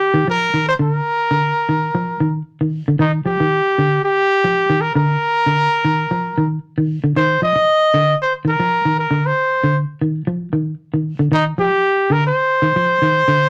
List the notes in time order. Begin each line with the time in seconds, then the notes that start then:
Already playing: G4
0.14 D#3
0.28 F3 A#4
0.54 D#3
0.69 C5
0.79 D3 A#4
1.31 D3
1.69 D#3
1.95 F3
2.20 D#3
2.61 D#3
2.88 D3
2.99 D#3 D#4
3.26 F3 G4
3.40 D#3
3.78 D3
4.04 G4
4.44 F3
4.70 D#3
4.81 A#4
4.95 D3 A#4
5.46 D3
5.85 D#3
6.11 F3
6.38 D#3
6.78 D#3
7.04 D3
7.16 D#3 C5
7.42 F3 D#5
7.56 muted clean electric guitar stroke
7.94 D3
8.22 C5
8.45 D#3 A#4
8.60 F3
8.85 D#3
8.99 A#4
9.11 D3
9.26 C5
9.64 D3
10.02 D#3
10.27 F3
10.53 D#3
10.94 D#3
11.19 D3
11.32 D#3 D#4
11.58 F3 G4
12.10 D3 A#4
12.27 C5
12.62 D#3
12.76 F3
13.02 D#3
13.28 D3